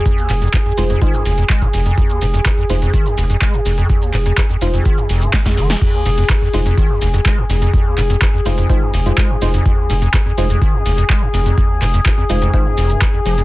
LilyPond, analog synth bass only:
\new Staff \with { instrumentName = "Analog synth bass" } { \clef bass \time 4/4 \key f \minor \tempo 4 = 125 r8 f,,8 r8 f,,8 r8 f,,8 r8 f,,8 | r8 f,,8 r8 f,,8 r8 f,,8 r8 f,,8 | r8 f,,8 r8 f,,8 r8 f,,8 r8 f,,8 | r8 f,,8 r8 f,,8 r8 f,,8 r8 f,,8 |
r8 f,,8 r8 f,,8 r8 f,,8 r8 f,,8 | r8 f,,8 r8 f,,8 r8 f,,8 r8 f,,8 | r8 f,,8 r8 f,,8 r8 f,,8 r8 f,,8 | }